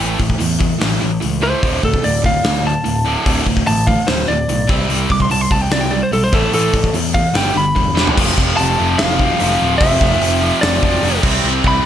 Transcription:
Already playing: A2 E3 G5
0.00 A1 A3
0.19 A1 A2 E3, kick
0.30 kick
0.39 E2 A2 E3, open hi-hat
0.59 A2 E3, kick
0.80 A1 A2 E3, snare, open hi-hat
0.92 snare
1.01 A1 A2 E3
1.21 C#2 A2 E3, open hi-hat
1.42 A2 E3 A3 C5
1.62 D1 D2 A2 D3, kick, open hi-hat
1.83 D1 D2 A2 A4, kick
1.94 kick
2.04 D1 D2 A2 D5, open hi-hat
2.24 D1 D2 A2 F5, kick
2.44 D2 A2, snare, open hi-hat
2.65 D2 A2 A5
2.84 D1 D2 A2, open hi-hat
3.06 D2 A2 D3
3.25 D1 D2 A2 D3, kick, open hi-hat
3.46 D1 D2 A2, kick
3.57 kick
3.67 A1 D2 A2 A5, open hi-hat
3.87 D2 A2 F5, kick
4.07 D1 D2 A2 C5, snare, open hi-hat
4.19 snare
4.28 D1 D2 A2 D5
4.48 B1 D2 A2, open hi-hat
4.67 C2 C3 G3 C4, kick
4.89 C2 C3 G3 C4, open hi-hat
5.10 C2 C3 G3 D6, kick
5.20 C6, kick
5.29 C2 C3 G3 A5, open hi-hat
5.41 C6
5.51 C2 C3 G3 A5, kick
5.62 G5
5.70 C2 C3 G3 D5, snare, open hi-hat
5.81 G5, snare
5.91 C3 G3 D5
6.03 C5
6.12 B1 C3 G3 A4, open hi-hat
6.24 C5
6.33 A1 A2 E3 A3 A4, kick
6.52 A1 A2 E3 A3 A4, open hi-hat
6.74 A1 A2 E3, kick
6.84 kick
6.93 E2 A2 E3, open hi-hat
7.14 A2 E3 F5, kick
7.34 G1 G2 D3 G3 G5, snare, open hi-hat
7.46 snare
7.55 G1 G2 D3 B5
7.75 E1 G2 D3, kick
7.95 G2 D3 G3, snare
8.07 floor tom
8.16 F1 F2 C3 F3, kick, crash
8.38 F1 F2 C3 F3, kick
8.57 F2 C3 F3 A5, open hi-hat
8.61 F1
8.78 F1 F2 C3 F3
8.98 F1 F2 C3 F3 F5, snare, open hi-hat
9.18 F2 C3 F3, kick
9.39 F1 F2 C3 F3, open hi-hat
9.51 snare
9.62 D1 F2 C3 F3
9.78 F1 F2 C3 E5, kick, open hi-hat
9.83 F3
10.01 F1 F2 C3 F3, kick
10.22 F1 F2 C3 F3, open hi-hat
10.41 F2 C3 F3
10.45 F3
10.61 F1 F2 C3 F3 D5, snare, open hi-hat
10.82 F1 F2 C3 F3, kick
11.03 F1 F2 C3 F3, open hi-hat
11.14 snare
11.23 C2 C3 G3 C4, kick, crash
11.44 C2 C3 G3 C4
11.64 C2 C3 G3 C4, kick
11.68 B5

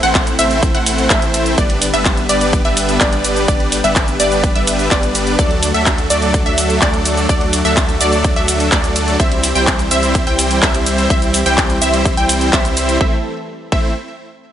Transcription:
Already playing: C3 E3 A3 E4
0.03 A1 A3 C4 E4 C5 F#5, closed hi-hat, shaker
0.15 kick, clap, closed hi-hat, shaker
0.27 closed hi-hat, shaker
0.39 A1 A3 C4 E4 C5 E5, open hi-hat, ride, shaker
0.51 closed hi-hat, shaker
0.63 kick, closed hi-hat, shaker
0.74 A1 A3 C4 E4 C5 F#5, closed hi-hat
0.86 open hi-hat, ride, shaker
0.98 closed hi-hat, shaker
1.10 A1 E5, kick, clap, closed hi-hat, shaker
1.22 closed hi-hat, shaker
1.34 open hi-hat, ride, shaker
1.46 closed hi-hat, shaker
1.58 G1 D3 G3 B3 D4 G4 B4 D5, kick, closed hi-hat, shaker
1.70 closed hi-hat
1.82 open hi-hat, ride, shaker
1.94 G1 G3 B3 D4 B4 E5, closed hi-hat, shaker
2.05 kick, clap, closed hi-hat, shaker
2.17 closed hi-hat, shaker
2.29 G1 G3 B3 D4 B4 D5, open hi-hat, ride, shaker
2.41 closed hi-hat, shaker
2.53 kick, closed hi-hat, shaker
2.65 G1 G3 B3 D4 B4 E5, closed hi-hat
2.77 open hi-hat, ride, shaker
2.89 closed hi-hat, shaker
3.01 G1 G3 D4 D5, kick, clap, closed hi-hat, shaker
3.13 closed hi-hat, shaker
3.24 open hi-hat, ride, shaker
3.36 closed hi-hat, shaker
3.48 G1 G3 B3 D4 B4 D5, kick, closed hi-hat, shaker
3.60 closed hi-hat
3.72 open hi-hat, ride, shaker
3.84 G1 G3 B3 D4 B4 E5, closed hi-hat, shaker
3.96 kick, clap, closed hi-hat, shaker
4.08 closed hi-hat, shaker
4.20 G1 G3 B3 D4 B4 D5, open hi-hat, ride, shaker
4.32 closed hi-hat, shaker
4.44 kick, closed hi-hat, shaker
4.55 G1 G3 B3 D4 B4 E5, closed hi-hat
4.67 open hi-hat, ride, shaker
4.79 closed hi-hat, shaker
4.91 G1 G3 D4 D5, kick, clap, closed hi-hat, shaker
5.03 closed hi-hat, shaker
5.15 open hi-hat, ride, shaker
5.27 closed hi-hat, shaker
5.39 D2 F#3 A3 D4 F#4 A4 D5, kick, closed hi-hat, shaker
5.51 closed hi-hat
5.63 open hi-hat, ride, shaker
5.74 D2 F#3 A3 D4 A4 E5, closed hi-hat, shaker
5.86 kick, clap, closed hi-hat, shaker
5.98 closed hi-hat, shaker
6.10 D2 F#3 A3 D4 A4 D5, open hi-hat, ride, shaker
6.22 closed hi-hat, shaker
6.34 kick, closed hi-hat, shaker
6.46 D2 F#3 A3 D4 A4 E5, closed hi-hat
6.58 open hi-hat, ride, shaker
6.70 closed hi-hat, shaker
6.82 D2 F#3 A3 D4 A4 D5, kick, clap, closed hi-hat, shaker
6.94 closed hi-hat, shaker
7.05 open hi-hat, ride, shaker
7.17 closed hi-hat, shaker
7.29 D2 F#3 A3 D4 A4 D5, kick, closed hi-hat, shaker
7.41 closed hi-hat
7.53 open hi-hat, ride, shaker
7.65 D2 F#3 A3 D4 A4 E5, closed hi-hat, shaker
7.77 kick, clap, closed hi-hat, shaker
7.89 closed hi-hat, shaker
8.01 D2 F#3 A3 D4 A4 D5, open hi-hat, ride, shaker
8.13 closed hi-hat, shaker
8.24 kick, closed hi-hat, shaker
8.36 D2 F#3 A3 D4 A4 E5, closed hi-hat
8.48 open hi-hat, ride, shaker
8.60 closed hi-hat, shaker
8.72 D2 D5, kick, clap, closed hi-hat, shaker
8.84 closed hi-hat, shaker
8.96 open hi-hat, ride, shaker
9.08 closed hi-hat, shaker
9.20 C2 E3 G3 C4 E4 G4 C5 E5, kick, closed hi-hat, shaker
9.32 closed hi-hat
9.44 open hi-hat, ride, shaker
9.55 C2 G3 C4 E4 C5 G5, closed hi-hat, shaker
9.67 kick, clap, closed hi-hat, shaker
9.79 closed hi-hat, shaker
9.91 C2 G3 C4 E4 C5 E5, open hi-hat, ride, shaker
10.03 closed hi-hat, shaker
10.15 kick, closed hi-hat, shaker
10.27 C2 G3 C4 E4 C5 G5, closed hi-hat
10.39 open hi-hat, ride, shaker
10.51 closed hi-hat, shaker
10.63 C2 E5, kick, clap, closed hi-hat, shaker
10.74 closed hi-hat, shaker
10.86 open hi-hat, ride, shaker
10.98 closed hi-hat, shaker
11.10 C2 G3 C4 E4 C5 E5, kick, closed hi-hat, shaker
11.22 closed hi-hat, shaker
11.34 open hi-hat, ride, shaker
11.46 C2 G3 C4 E4 C5 G5, closed hi-hat, shaker
11.58 kick, clap, closed hi-hat, shaker
11.70 closed hi-hat, shaker
11.82 C2 G3 C4 E4 C5 E5, open hi-hat, ride, shaker
11.94 closed hi-hat, shaker
12.05 kick, closed hi-hat, shaker
12.17 C2 G3 C4 E4 C5 G5, closed hi-hat, shaker
12.29 open hi-hat, ride, shaker
12.41 closed hi-hat, shaker
12.53 C2 G3 C4 E4 C5 E5, kick, clap, closed hi-hat, shaker
12.65 closed hi-hat, shaker
12.77 open hi-hat, ride, shaker
12.89 closed hi-hat, shaker
13.01 A1 E3 A3 C4 E4 A4 C5 E5, kick
13.72 A1 A3 C4 E4 C5 E5, kick

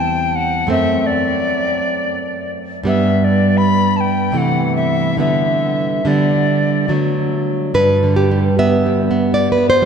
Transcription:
Already playing: E2 G3 C4
0.00 G5
0.35 F#5
0.67 F#2 A3 C4
0.71 E5
1.06 D5
2.83 G2 G3 B3
2.88 E5
3.24 D5
3.57 B5
3.96 A5
4.00 G5
4.32 C3 E3 A3
4.37 F#5
4.76 E5
5.17 D3 G3 B3 E5
6.05 D3 G3 B3 D5
6.88 D3 F#3 A3
7.74 G2 B4
8.03 D3
8.16 G4
8.31 G3
8.59 B3 E5
8.86 G3
9.11 B3
9.34 G3 D5
9.52 B4
9.58 B3
9.70 C5
9.82 G3

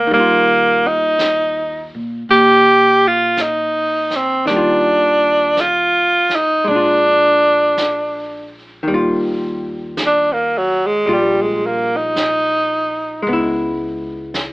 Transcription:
Already playing: A#3 G#4 C#5
0.07 D#3
0.11 D#2 G3 A#3, brush sweep
0.19 F4
0.87 D#4
1.19 brush sweep, snare, hi-hat pedal
1.95 A#2
2.29 A#2 G4, brush sweep
3.07 F4
3.37 brush sweep, snare, hi-hat pedal
3.42 D#4
4.10 snare
4.16 C4
4.46 D#2 D#3 D4, brush sweep, snare
4.50 G3
4.56 F4
5.57 F4, brush sweep, snare, hi-hat pedal
6.29 snare
6.36 D#4
6.64 A#1 G#3 D4, brush sweep
6.71 D4
6.75 F4
7.77 brush sweep, snare, hi-hat pedal
8.83 D#3
8.87 D#2 G3, brush sweep
8.94 F4
9.97 brush sweep, snare, hi-hat pedal
10.06 D4
10.32 A#3
10.58 F#3
10.86 G#3
11.06 A#1 G3 F4, brush sweep
11.13 G3
11.41 G#3
11.66 A#3
11.96 D#4
12.16 brush sweep, snare, hi-hat pedal
13.22 G#3, brush sweep
13.27 C#2 B3
13.33 E4
14.34 brush sweep, snare, hi-hat pedal

